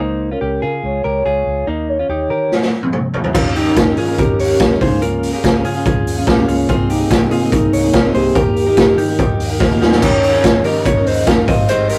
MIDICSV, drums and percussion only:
0, 0, Header, 1, 2, 480
1, 0, Start_track
1, 0, Tempo, 417537
1, 1923, Time_signature, 4, 2, 24, 8
1, 13778, End_track
2, 0, Start_track
2, 0, Title_t, "Drums"
2, 2892, Note_on_c, 9, 38, 43
2, 3007, Note_off_c, 9, 38, 0
2, 3014, Note_on_c, 9, 38, 49
2, 3129, Note_off_c, 9, 38, 0
2, 3248, Note_on_c, 9, 48, 53
2, 3363, Note_off_c, 9, 48, 0
2, 3363, Note_on_c, 9, 47, 72
2, 3478, Note_off_c, 9, 47, 0
2, 3606, Note_on_c, 9, 43, 72
2, 3721, Note_off_c, 9, 43, 0
2, 3724, Note_on_c, 9, 43, 75
2, 3839, Note_off_c, 9, 43, 0
2, 3846, Note_on_c, 9, 49, 91
2, 3848, Note_on_c, 9, 36, 104
2, 3961, Note_off_c, 9, 49, 0
2, 3963, Note_off_c, 9, 36, 0
2, 4083, Note_on_c, 9, 46, 50
2, 4198, Note_off_c, 9, 46, 0
2, 4324, Note_on_c, 9, 42, 69
2, 4329, Note_on_c, 9, 36, 98
2, 4334, Note_on_c, 9, 38, 98
2, 4439, Note_off_c, 9, 42, 0
2, 4444, Note_off_c, 9, 36, 0
2, 4449, Note_off_c, 9, 38, 0
2, 4561, Note_on_c, 9, 46, 70
2, 4676, Note_off_c, 9, 46, 0
2, 4810, Note_on_c, 9, 36, 100
2, 4812, Note_on_c, 9, 42, 67
2, 4925, Note_off_c, 9, 36, 0
2, 4926, Note_off_c, 9, 42, 0
2, 5049, Note_on_c, 9, 46, 79
2, 5164, Note_off_c, 9, 46, 0
2, 5281, Note_on_c, 9, 42, 64
2, 5287, Note_on_c, 9, 36, 119
2, 5292, Note_on_c, 9, 38, 108
2, 5396, Note_off_c, 9, 42, 0
2, 5402, Note_off_c, 9, 36, 0
2, 5407, Note_off_c, 9, 38, 0
2, 5529, Note_on_c, 9, 46, 56
2, 5532, Note_on_c, 9, 36, 96
2, 5644, Note_off_c, 9, 46, 0
2, 5647, Note_off_c, 9, 36, 0
2, 5770, Note_on_c, 9, 42, 67
2, 5885, Note_off_c, 9, 42, 0
2, 6011, Note_on_c, 9, 46, 54
2, 6126, Note_off_c, 9, 46, 0
2, 6254, Note_on_c, 9, 36, 95
2, 6254, Note_on_c, 9, 42, 65
2, 6264, Note_on_c, 9, 38, 105
2, 6369, Note_off_c, 9, 36, 0
2, 6369, Note_off_c, 9, 42, 0
2, 6379, Note_off_c, 9, 38, 0
2, 6489, Note_on_c, 9, 46, 65
2, 6604, Note_off_c, 9, 46, 0
2, 6734, Note_on_c, 9, 36, 107
2, 6737, Note_on_c, 9, 42, 68
2, 6849, Note_off_c, 9, 36, 0
2, 6851, Note_off_c, 9, 42, 0
2, 6977, Note_on_c, 9, 46, 68
2, 7092, Note_off_c, 9, 46, 0
2, 7209, Note_on_c, 9, 36, 120
2, 7212, Note_on_c, 9, 42, 65
2, 7223, Note_on_c, 9, 38, 104
2, 7324, Note_off_c, 9, 36, 0
2, 7327, Note_off_c, 9, 42, 0
2, 7338, Note_off_c, 9, 38, 0
2, 7453, Note_on_c, 9, 46, 60
2, 7568, Note_off_c, 9, 46, 0
2, 7689, Note_on_c, 9, 42, 64
2, 7692, Note_on_c, 9, 36, 107
2, 7804, Note_off_c, 9, 42, 0
2, 7807, Note_off_c, 9, 36, 0
2, 7926, Note_on_c, 9, 46, 60
2, 8041, Note_off_c, 9, 46, 0
2, 8166, Note_on_c, 9, 42, 61
2, 8170, Note_on_c, 9, 36, 100
2, 8175, Note_on_c, 9, 38, 104
2, 8281, Note_off_c, 9, 42, 0
2, 8285, Note_off_c, 9, 36, 0
2, 8290, Note_off_c, 9, 38, 0
2, 8402, Note_on_c, 9, 46, 67
2, 8517, Note_off_c, 9, 46, 0
2, 8648, Note_on_c, 9, 36, 104
2, 8649, Note_on_c, 9, 42, 67
2, 8763, Note_off_c, 9, 36, 0
2, 8764, Note_off_c, 9, 42, 0
2, 8886, Note_on_c, 9, 46, 69
2, 9001, Note_off_c, 9, 46, 0
2, 9120, Note_on_c, 9, 42, 59
2, 9123, Note_on_c, 9, 36, 112
2, 9131, Note_on_c, 9, 38, 106
2, 9235, Note_off_c, 9, 42, 0
2, 9237, Note_off_c, 9, 36, 0
2, 9246, Note_off_c, 9, 38, 0
2, 9361, Note_on_c, 9, 46, 61
2, 9476, Note_off_c, 9, 46, 0
2, 9604, Note_on_c, 9, 36, 107
2, 9605, Note_on_c, 9, 42, 69
2, 9719, Note_off_c, 9, 36, 0
2, 9720, Note_off_c, 9, 42, 0
2, 9843, Note_on_c, 9, 46, 54
2, 9958, Note_off_c, 9, 46, 0
2, 10079, Note_on_c, 9, 42, 60
2, 10084, Note_on_c, 9, 36, 99
2, 10088, Note_on_c, 9, 38, 116
2, 10194, Note_off_c, 9, 42, 0
2, 10199, Note_off_c, 9, 36, 0
2, 10203, Note_off_c, 9, 38, 0
2, 10323, Note_on_c, 9, 46, 67
2, 10438, Note_off_c, 9, 46, 0
2, 10564, Note_on_c, 9, 36, 103
2, 10568, Note_on_c, 9, 42, 57
2, 10679, Note_off_c, 9, 36, 0
2, 10683, Note_off_c, 9, 42, 0
2, 10804, Note_on_c, 9, 46, 72
2, 10919, Note_off_c, 9, 46, 0
2, 11040, Note_on_c, 9, 36, 127
2, 11048, Note_on_c, 9, 38, 60
2, 11155, Note_off_c, 9, 36, 0
2, 11163, Note_off_c, 9, 38, 0
2, 11287, Note_on_c, 9, 38, 87
2, 11402, Note_off_c, 9, 38, 0
2, 11406, Note_on_c, 9, 38, 96
2, 11521, Note_off_c, 9, 38, 0
2, 11521, Note_on_c, 9, 49, 96
2, 11523, Note_on_c, 9, 36, 110
2, 11636, Note_off_c, 9, 49, 0
2, 11638, Note_off_c, 9, 36, 0
2, 11759, Note_on_c, 9, 46, 62
2, 11874, Note_off_c, 9, 46, 0
2, 11997, Note_on_c, 9, 51, 51
2, 12001, Note_on_c, 9, 44, 62
2, 12002, Note_on_c, 9, 36, 107
2, 12007, Note_on_c, 9, 38, 108
2, 12112, Note_off_c, 9, 51, 0
2, 12116, Note_off_c, 9, 44, 0
2, 12117, Note_off_c, 9, 36, 0
2, 12122, Note_off_c, 9, 38, 0
2, 12232, Note_on_c, 9, 46, 74
2, 12347, Note_off_c, 9, 46, 0
2, 12478, Note_on_c, 9, 44, 58
2, 12480, Note_on_c, 9, 36, 105
2, 12481, Note_on_c, 9, 51, 56
2, 12593, Note_off_c, 9, 44, 0
2, 12595, Note_off_c, 9, 36, 0
2, 12596, Note_off_c, 9, 51, 0
2, 12719, Note_on_c, 9, 46, 83
2, 12834, Note_off_c, 9, 46, 0
2, 12953, Note_on_c, 9, 51, 50
2, 12955, Note_on_c, 9, 36, 127
2, 12955, Note_on_c, 9, 44, 66
2, 12964, Note_on_c, 9, 38, 109
2, 13068, Note_off_c, 9, 51, 0
2, 13070, Note_off_c, 9, 36, 0
2, 13070, Note_off_c, 9, 44, 0
2, 13079, Note_off_c, 9, 38, 0
2, 13194, Note_on_c, 9, 46, 61
2, 13197, Note_on_c, 9, 36, 109
2, 13309, Note_off_c, 9, 46, 0
2, 13312, Note_off_c, 9, 36, 0
2, 13432, Note_on_c, 9, 51, 60
2, 13433, Note_on_c, 9, 44, 64
2, 13547, Note_off_c, 9, 51, 0
2, 13548, Note_off_c, 9, 44, 0
2, 13670, Note_on_c, 9, 46, 63
2, 13778, Note_off_c, 9, 46, 0
2, 13778, End_track
0, 0, End_of_file